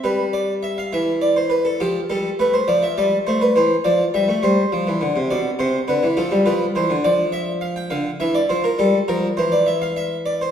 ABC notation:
X:1
M:12/8
L:1/16
Q:3/8=69
K:Dm
V:1 name="Harpsichord"
=B2 d2 e f e2 d c B A G2 A2 B c d e d2 c B | c2 d2 e2 c6 d2 c2 =B2 A2 B2 c2 | d2 e2 f g f2 e d c B A2 B2 c d e f e2 d c |]
V:2 name="Harpsichord" clef=bass
G,6 E,6 F,2 G,2 A,2 F,2 G,2 A,2 | E,2 F,2 G, A, G,2 F, E, D, C, =B,,2 C,2 D, E, F, G, F,2 E, D, | F,6 D,2 E,2 F,2 G,2 F,2 E,8 |]